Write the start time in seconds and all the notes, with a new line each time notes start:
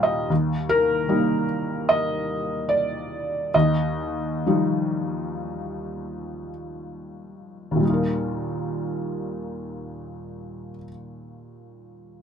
Already playing: D#2 D#3 G3 F5 G5 A#5
0.03 D#5
0.30 D#2
0.69 A#4
1.09 G3 A#3 D#4
1.89 D#5
2.69 D5
3.54 D#2 D#5
4.47 F3 G3 D#4
7.71 D#2
7.76 A#2
7.80 G3
7.85 D#4
7.89 F4
7.93 A#4